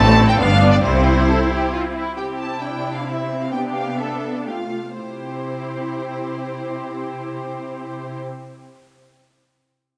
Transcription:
Already playing: A1 A2 A3 C4 A4 A5
0.07 C4
0.18 E4
0.28 C4 G5
0.38 G1 G2 B3 D4 D5 F5
0.50 D4
0.62 F4
0.72 G4 D5
0.82 C2 C3 G3 C4 E4 C5
0.94 C4
1.05 E4
1.17 G4
1.28 A4
1.49 G4
1.73 F4
1.95 E4
2.17 C3 C4 E4 G4 G5
2.39 A5
2.61 D4 E4 G5
2.96 F5
3.08 C4 E5
3.41 F5
3.52 B3 D4 G4 G5
3.75 F5
3.98 A4 E5
4.34 D5
4.46 A3 F4 G4 F5
4.97 C3 C4 E4 G4 C5

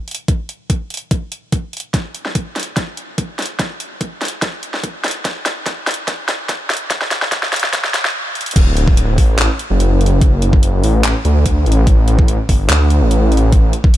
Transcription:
0.08 closed hi-hat
0.11 closed hi-hat
0.15 closed hi-hat
0.28 kick, closed hi-hat
0.49 closed hi-hat
0.70 kick, closed hi-hat
0.90 closed hi-hat
0.94 closed hi-hat
0.97 closed hi-hat
1.11 kick, closed hi-hat
1.32 closed hi-hat
1.52 kick, closed hi-hat
1.73 closed hi-hat
1.77 closed hi-hat
1.80 closed hi-hat
1.94 kick, snare, closed hi-hat
2.15 closed hi-hat
2.25 snare
2.35 kick, closed hi-hat
2.56 snare, closed hi-hat
2.60 closed hi-hat
2.63 closed hi-hat
2.77 kick, snare, closed hi-hat
2.97 closed hi-hat
3.18 kick, closed hi-hat
3.39 snare, closed hi-hat
3.42 closed hi-hat
3.46 closed hi-hat
3.59 kick, snare, closed hi-hat
3.80 closed hi-hat
4.01 kick, closed hi-hat
4.21 snare, closed hi-hat
4.25 closed hi-hat
4.28 closed hi-hat
4.42 kick, snare, closed hi-hat
4.63 closed hi-hat
4.74 snare
4.84 kick, closed hi-hat
5.04 snare, closed hi-hat
5.08 closed hi-hat
5.11 closed hi-hat
5.25 kick, snare, closed hi-hat
5.46 snare, closed hi-hat
5.66 kick, snare, closed hi-hat
5.87 snare, closed hi-hat
5.91 closed hi-hat
5.94 closed hi-hat
6.08 kick, snare, closed hi-hat
6.28 snare, closed hi-hat
6.49 kick, snare, closed hi-hat
6.70 snare, closed hi-hat
6.73 closed hi-hat
6.77 closed hi-hat
6.90 kick, snare, closed hi-hat
7.01 snare
7.11 snare, closed hi-hat
7.22 snare
7.32 kick, snare, closed hi-hat
7.43 snare
7.53 snare, closed hi-hat
7.56 closed hi-hat
7.60 closed hi-hat
7.64 snare
7.73 kick, snare, closed hi-hat
7.84 snare
7.94 snare, closed hi-hat
8.05 snare
8.35 closed hi-hat
8.41 closed hi-hat
8.46 closed hi-hat
8.51 closed hi-hat
8.56 D1, kick, closed hi-hat, crash
8.77 closed hi-hat
8.88 kick
8.97 closed hi-hat
9.18 A1, kick, open hi-hat
9.39 clap, closed hi-hat
9.59 closed hi-hat
9.70 F#1
9.80 closed hi-hat
10.01 closed hi-hat
10.06 closed hi-hat
10.21 kick, closed hi-hat
10.42 closed hi-hat
10.53 kick
10.63 closed hi-hat
10.84 A1, open hi-hat
11.04 clap, closed hi-hat
11.25 D2, closed hi-hat
11.46 kick, closed hi-hat
11.66 A1, closed hi-hat
11.72 closed hi-hat
11.87 kick, closed hi-hat
12.08 closed hi-hat
12.19 kick
12.28 closed hi-hat
12.49 G1, kick, open hi-hat
12.70 D2, clap, closed hi-hat
12.90 closed hi-hat
13.01 A1
13.11 closed hi-hat
13.32 closed hi-hat
13.37 closed hi-hat
13.52 kick, closed hi-hat
13.73 closed hi-hat
13.84 kick
13.94 closed hi-hat

